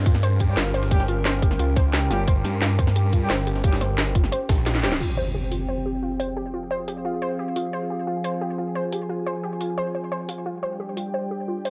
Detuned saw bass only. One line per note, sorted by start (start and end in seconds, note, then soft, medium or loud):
0.00 0.56 G2 medium
0.57 0.73 G1 medium
0.74 1.24 G1 loud
1.25 1.58 G1 medium
1.59 2.09 C#2 loud
2.11 2.26 G1 loud
2.28 2.43 G1 loud
2.45 3.29 G2 medium
3.30 3.46 G1 loud
3.47 3.97 G1 loud
3.98 4.31 G1 medium
4.49 4.99 A#1 loud